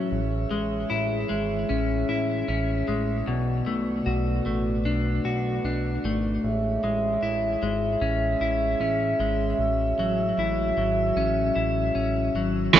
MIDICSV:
0, 0, Header, 1, 5, 480
1, 0, Start_track
1, 0, Key_signature, 3, "major"
1, 0, Tempo, 789474
1, 69, Time_signature, 4, 2, 24, 8
1, 7781, End_track
2, 0, Start_track
2, 0, Title_t, "French horn section"
2, 0, Program_c, 0, 60
2, 0, Note_on_c, 0, 52, 68
2, 0, Note_on_c, 0, 73, 70
2, 73, Note_on_c, 0, 68, 66
2, 75, Note_on_c, 0, 76, 80
2, 1962, Note_off_c, 0, 73, 0
2, 1972, Note_off_c, 0, 68, 0
2, 1973, Note_off_c, 0, 76, 0
2, 1996, Note_on_c, 0, 74, 79
2, 1997, Note_on_c, 0, 71, 68
2, 2000, Note_on_c, 0, 66, 61
2, 3881, Note_off_c, 0, 52, 0
2, 3893, Note_off_c, 0, 74, 0
2, 3894, Note_off_c, 0, 71, 0
2, 3895, Note_off_c, 0, 66, 0
2, 3916, Note_on_c, 0, 76, 84
2, 3917, Note_on_c, 0, 68, 61
2, 3918, Note_on_c, 0, 73, 62
2, 3919, Note_on_c, 0, 56, 70
2, 5814, Note_off_c, 0, 68, 0
2, 5830, Note_on_c, 0, 66, 72
2, 7643, Note_off_c, 0, 56, 0
2, 7643, Note_off_c, 0, 66, 0
2, 7643, Note_off_c, 0, 73, 0
2, 7643, Note_off_c, 0, 76, 0
2, 7747, Note_on_c, 0, 52, 89
2, 7747, Note_on_c, 0, 76, 97
2, 7781, Note_off_c, 0, 52, 0
2, 7781, Note_off_c, 0, 76, 0
2, 7781, End_track
3, 0, Start_track
3, 0, Title_t, "Clean electric guitar"
3, 0, Program_c, 1, 27
3, 0, Note_on_c, 1, 45, 76
3, 0, Note_on_c, 1, 54, 53
3, 0, Note_on_c, 1, 61, 53
3, 0, Note_on_c, 1, 64, 50
3, 67, Note_off_c, 1, 45, 0
3, 117, Note_off_c, 1, 54, 0
3, 308, Note_on_c, 1, 56, 55
3, 543, Note_off_c, 1, 64, 0
3, 545, Note_on_c, 1, 64, 55
3, 778, Note_off_c, 1, 56, 0
3, 785, Note_on_c, 1, 56, 50
3, 1026, Note_off_c, 1, 61, 0
3, 1029, Note_on_c, 1, 61, 56
3, 1263, Note_off_c, 1, 64, 0
3, 1270, Note_on_c, 1, 64, 54
3, 1503, Note_off_c, 1, 61, 0
3, 1510, Note_on_c, 1, 61, 52
3, 1742, Note_off_c, 1, 56, 0
3, 1750, Note_on_c, 1, 56, 54
3, 1991, Note_on_c, 1, 47, 81
3, 2037, Note_off_c, 1, 56, 0
3, 2038, Note_off_c, 1, 61, 0
3, 2038, Note_off_c, 1, 64, 0
3, 2228, Note_on_c, 1, 57, 51
3, 2468, Note_on_c, 1, 66, 57
3, 2708, Note_off_c, 1, 57, 0
3, 2711, Note_on_c, 1, 57, 54
3, 2951, Note_on_c, 1, 62, 55
3, 3184, Note_off_c, 1, 66, 0
3, 3192, Note_on_c, 1, 66, 55
3, 3428, Note_off_c, 1, 62, 0
3, 3436, Note_on_c, 1, 62, 53
3, 3676, Note_off_c, 1, 57, 0
3, 3678, Note_on_c, 1, 57, 50
3, 3910, Note_off_c, 1, 47, 0
3, 3958, Note_off_c, 1, 66, 0
3, 3960, Note_off_c, 1, 62, 0
3, 4154, Note_off_c, 1, 57, 0
3, 4157, Note_on_c, 1, 56, 52
3, 4393, Note_on_c, 1, 64, 54
3, 4629, Note_off_c, 1, 56, 0
3, 4637, Note_on_c, 1, 56, 50
3, 4873, Note_on_c, 1, 61, 55
3, 5111, Note_off_c, 1, 64, 0
3, 5114, Note_on_c, 1, 64, 55
3, 5352, Note_off_c, 1, 61, 0
3, 5355, Note_on_c, 1, 61, 50
3, 5587, Note_off_c, 1, 56, 0
3, 5594, Note_on_c, 1, 56, 49
3, 5880, Note_off_c, 1, 56, 0
3, 6076, Note_on_c, 1, 54, 51
3, 6094, Note_off_c, 1, 64, 0
3, 6316, Note_on_c, 1, 64, 54
3, 6545, Note_off_c, 1, 54, 0
3, 6552, Note_on_c, 1, 54, 46
3, 6787, Note_off_c, 1, 61, 0
3, 6790, Note_on_c, 1, 61, 58
3, 7023, Note_off_c, 1, 64, 0
3, 7026, Note_on_c, 1, 64, 51
3, 7263, Note_off_c, 1, 61, 0
3, 7265, Note_on_c, 1, 61, 49
3, 7505, Note_off_c, 1, 54, 0
3, 7513, Note_on_c, 1, 54, 51
3, 7781, Note_off_c, 1, 54, 0
3, 7781, Note_off_c, 1, 61, 0
3, 7781, Note_off_c, 1, 64, 0
3, 7781, End_track
4, 0, Start_track
4, 0, Title_t, "Overdriven electric guitar"
4, 0, Program_c, 2, 29
4, 7743, Note_on_c, 2, 52, 78
4, 7751, Note_on_c, 2, 57, 85
4, 7761, Note_on_c, 2, 61, 87
4, 7781, Note_off_c, 2, 52, 0
4, 7781, Note_off_c, 2, 57, 0
4, 7781, Note_off_c, 2, 61, 0
4, 7781, End_track
5, 0, Start_track
5, 0, Title_t, "Analog synth bass"
5, 0, Program_c, 3, 38
5, 70, Note_on_c, 3, 33, 87
5, 281, Note_off_c, 3, 33, 0
5, 307, Note_on_c, 3, 33, 94
5, 519, Note_off_c, 3, 33, 0
5, 550, Note_on_c, 3, 33, 107
5, 761, Note_off_c, 3, 33, 0
5, 793, Note_on_c, 3, 32, 76
5, 1003, Note_off_c, 3, 32, 0
5, 1037, Note_on_c, 3, 33, 97
5, 1245, Note_off_c, 3, 33, 0
5, 1272, Note_on_c, 3, 33, 84
5, 1482, Note_off_c, 3, 33, 0
5, 1511, Note_on_c, 3, 33, 82
5, 1722, Note_off_c, 3, 33, 0
5, 1755, Note_on_c, 3, 33, 72
5, 1964, Note_off_c, 3, 33, 0
5, 1992, Note_on_c, 3, 35, 86
5, 2202, Note_off_c, 3, 35, 0
5, 2232, Note_on_c, 3, 35, 85
5, 2442, Note_off_c, 3, 35, 0
5, 2473, Note_on_c, 3, 35, 99
5, 2682, Note_off_c, 3, 35, 0
5, 2712, Note_on_c, 3, 33, 81
5, 2954, Note_on_c, 3, 35, 96
5, 2963, Note_off_c, 3, 33, 0
5, 3163, Note_off_c, 3, 35, 0
5, 3194, Note_on_c, 3, 35, 82
5, 3403, Note_off_c, 3, 35, 0
5, 3429, Note_on_c, 3, 35, 87
5, 3641, Note_off_c, 3, 35, 0
5, 3675, Note_on_c, 3, 32, 89
5, 3883, Note_off_c, 3, 32, 0
5, 3916, Note_on_c, 3, 33, 87
5, 4124, Note_off_c, 3, 33, 0
5, 4157, Note_on_c, 3, 33, 90
5, 4365, Note_off_c, 3, 33, 0
5, 4392, Note_on_c, 3, 33, 95
5, 4602, Note_off_c, 3, 33, 0
5, 4635, Note_on_c, 3, 32, 86
5, 4843, Note_off_c, 3, 32, 0
5, 4873, Note_on_c, 3, 33, 109
5, 5083, Note_off_c, 3, 33, 0
5, 5112, Note_on_c, 3, 33, 88
5, 5322, Note_off_c, 3, 33, 0
5, 5350, Note_on_c, 3, 33, 89
5, 5561, Note_off_c, 3, 33, 0
5, 5591, Note_on_c, 3, 32, 73
5, 5802, Note_off_c, 3, 32, 0
5, 5830, Note_on_c, 3, 33, 92
5, 6041, Note_off_c, 3, 33, 0
5, 6071, Note_on_c, 3, 33, 86
5, 6281, Note_off_c, 3, 33, 0
5, 6310, Note_on_c, 3, 33, 94
5, 6521, Note_off_c, 3, 33, 0
5, 6551, Note_on_c, 3, 32, 86
5, 6762, Note_off_c, 3, 32, 0
5, 6787, Note_on_c, 3, 33, 97
5, 6999, Note_off_c, 3, 33, 0
5, 7030, Note_on_c, 3, 33, 80
5, 7241, Note_off_c, 3, 33, 0
5, 7268, Note_on_c, 3, 33, 92
5, 7480, Note_off_c, 3, 33, 0
5, 7506, Note_on_c, 3, 32, 73
5, 7719, Note_off_c, 3, 32, 0
5, 7746, Note_on_c, 3, 33, 95
5, 7781, Note_off_c, 3, 33, 0
5, 7781, End_track
0, 0, End_of_file